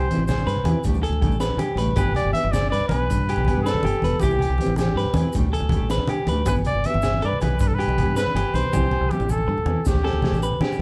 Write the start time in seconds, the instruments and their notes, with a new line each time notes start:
Already playing: trumpet C5
0.11 steel-string acoustic guitar E3 C4 E4 G4, closed hi-hat, high conga
0.17 fingered electric bass A1, muted conga, low conga
0.26 trumpet C5, snare, closed hi-hat, low conga, low agogo, maracas
0.38 high conga, low conga, maracas
0.47 fingered electric bass G2, clean electric guitar B4, snare, closed hi-hat, maracas
0.56 low conga
0.64 fingered electric bass E2, steel-string acoustic guitar E3 C4, closed hi-hat, muted conga, high conga, low conga, low agogo
0.68 steel-string acoustic guitar E4 G4
0.84 fingered electric bass D2, steel-string acoustic guitar G3 A3 D4 G4, kick, closed hi-hat, low conga, maracas
0.94 high conga, maracas
1.03 clean electric guitar A4, closed hi-hat, low conga, low agogo
1.10 fingered electric bass D2, muted conga
1.21 steel-string acoustic guitar G3 A3 D4, kick, closed hi-hat, high conga, low conga, low agogo
1.28 fingered electric bass A1, maracas
1.32 low conga
1.40 clean electric guitar B4, snare, closed hi-hat, maracas
1.50 high conga, low conga
1.57 fingered electric bass D3, clean electric guitar G4, closed hi-hat, muted conga, low agogo, maracas
1.75 fingered electric bass A1, steel-string acoustic guitar G3 A3, clean electric guitar B4, closed hi-hat, high conga, low conga, maracas
1.80 steel-string acoustic guitar D4 G4
1.87 low conga
1.96 fingered electric bass G1, steel-string acoustic guitar B3 D4 G4, clean electric guitar G4, trumpet B4, kick, closed hi-hat, muted conga, low agogo, maracas
2.06 high conga
2.15 trumpet D5, closed hi-hat, low conga, low agogo
2.25 fingered electric bass G1
2.33 steel-string acoustic guitar B3 D4, trumpet E5, closed hi-hat, high conga
2.38 steel-string acoustic guitar G4
2.43 fingered electric bass G1, muted conga
2.52 trumpet D5, snare, closed hi-hat, low conga, low agogo, maracas
2.62 high conga, low conga
2.70 fingered electric bass G2, clean electric guitar B4, trumpet D5, snare, closed hi-hat
2.80 low conga
2.88 fingered electric bass B1, steel-string acoustic guitar B3, trumpet B4, closed hi-hat, muted conga, high conga, low agogo, maracas
2.93 steel-string acoustic guitar D4 G4
3.08 fingered electric bass G2, kick, closed hi-hat, low conga, maracas
3.17 high conga, low conga
3.29 clean electric guitar G4, closed hi-hat, low agogo
3.36 fingered electric bass B1, muted conga
3.45 steel-string acoustic guitar B3, kick, closed hi-hat, high conga, low conga, low agogo
3.50 steel-string acoustic guitar D4 G4
3.57 fingered electric bass G2
3.62 trumpet A4, clean electric guitar B4
3.66 snare, closed hi-hat, maracas
3.74 high conga, low conga
3.83 fingered electric bass G1, clean electric guitar G4, closed hi-hat, muted conga, low agogo
4.02 fingered electric bass E1, steel-string acoustic guitar B3 D4, clean electric guitar B4, closed hi-hat, high conga, maracas
4.07 steel-string acoustic guitar G4
4.12 low conga
4.20 fingered electric bass C2, steel-string acoustic guitar E3, trumpet G4, clean electric guitar G4, muted steel-string acoustic guitar stroke, kick, muted conga, low agogo, maracas
4.24 steel-string acoustic guitar E4 G4, closed hi-hat
4.29 high conga, maracas
4.39 closed hi-hat, low conga, low agogo
4.50 fingered electric bass C2
4.58 steel-string acoustic guitar E3 C4, closed hi-hat, high conga
4.63 steel-string acoustic guitar E4 G4, muted conga
4.68 fingered electric bass A1
4.76 trumpet G4, snare, closed hi-hat, low conga, low agogo, maracas
4.85 high conga, low conga
4.95 fingered electric bass G2, clean electric guitar B4, snare, closed hi-hat
5.05 low conga
5.14 fingered electric bass E2, steel-string acoustic guitar E3, closed hi-hat, muted conga, high conga, low agogo, maracas
5.18 steel-string acoustic guitar C4 E4 G4
5.33 fingered electric bass D2, steel-string acoustic guitar G3 A3, kick, closed hi-hat, low conga, maracas
5.37 steel-string acoustic guitar D4 G4
5.41 high conga, low conga
5.53 clean electric guitar A4, closed hi-hat, low agogo
5.60 fingered electric bass D2, muted conga
5.69 steel-string acoustic guitar G3, kick, closed hi-hat, high conga, low conga, low agogo
5.74 steel-string acoustic guitar A3 D4 G4
5.79 fingered electric bass A1
5.90 clean electric guitar B4, snare, closed hi-hat, maracas
5.98 high conga, low conga
6.08 fingered electric bass D3, clean electric guitar G4, closed hi-hat, muted conga, low agogo
6.27 fingered electric bass D2, steel-string acoustic guitar G3, clean electric guitar B4, closed hi-hat, high conga, maracas
6.31 steel-string acoustic guitar A3 D4 G4
6.46 fingered electric bass G1, steel-string acoustic guitar B3, trumpet B4, muted clean electric guitar stroke, kick, closed hi-hat, muted conga, low agogo, maracas
6.50 steel-string acoustic guitar D4 G4
6.55 high conga, maracas
6.65 trumpet D5, closed hi-hat, low conga, low agogo
6.75 fingered electric bass G1
6.84 steel-string acoustic guitar B3 D4, trumpet E5, closed hi-hat, high conga
6.89 steel-string acoustic guitar G4
6.94 fingered electric bass G1, muted conga
7.02 snare, closed hi-hat, low conga, low agogo, maracas
7.14 high conga, low conga
7.22 fingered electric bass G2, clean electric guitar B4, trumpet D5, closed hi-hat
7.33 low conga
7.40 fingered electric bass B1, steel-string acoustic guitar B3 D4, trumpet B4, closed hi-hat, muted conga, high conga, low agogo, maracas
7.45 steel-string acoustic guitar G4
7.59 fingered electric bass G2, trumpet B4, kick, closed hi-hat, low conga, maracas
7.67 trumpet A4, high conga, low conga
7.74 trumpet B4
7.79 clean electric guitar G4, closed hi-hat, low agogo
7.87 fingered electric bass B1, muted conga
7.98 steel-string acoustic guitar B3 D4, kick, closed hi-hat, high conga, low conga, low agogo
8.03 fingered electric bass G2, steel-string acoustic guitar G4
8.16 clean electric guitar B4, trumpet B4, snare, closed hi-hat, maracas
8.27 high conga
8.35 fingered electric bass G1, clean electric guitar G4, closed hi-hat, muted conga, low agogo
8.54 fingered electric bass B1, steel-string acoustic guitar B3 D4, clean electric guitar B4, trumpet C5, closed hi-hat, high conga, maracas
8.58 steel-string acoustic guitar G4
8.65 low conga
8.73 fingered electric bass C2, steel-string acoustic guitar E3 C4 E4 G4, clean electric guitar G4, kick, high tom, muted conga, low agogo, maracas
8.82 high conga, low conga
8.91 low conga, low agogo
9.01 fingered electric bass C2, low conga
9.11 steel-string acoustic guitar E3 C4 E4, trumpet G4, high tom, high conga, low conga, maracas
9.15 steel-string acoustic guitar G4
9.20 fingered electric bass A1, muted conga, maracas
9.29 trumpet A4, mid tom, low conga, low agogo, maracas
9.38 high conga
9.48 fingered electric bass G2, muted clean electric guitar stroke, mid tom, low conga
9.58 low conga
9.65 fingered electric bass E2, steel-string acoustic guitar E3 C4, muted conga, high conga, low conga, low agogo
9.70 steel-string acoustic guitar E4 G4
9.76 low conga
9.85 fingered electric bass D2, steel-string acoustic guitar A3 D4 G4, trumpet G4, kick, snare, low conga, maracas
9.95 high conga, low conga
10.04 clean electric guitar A4, snare, low agogo
10.13 fingered electric bass D2, muted conga
10.22 steel-string acoustic guitar A3 D4 G4, snare, high conga, low conga, low agogo
10.32 fingered electric bass A1, low conga, maracas
10.43 clean electric guitar B4, maracas
10.52 high conga, low conga
10.60 fingered electric bass D3, clean electric guitar G4, snare, muted conga, low conga, low agogo
10.72 maracas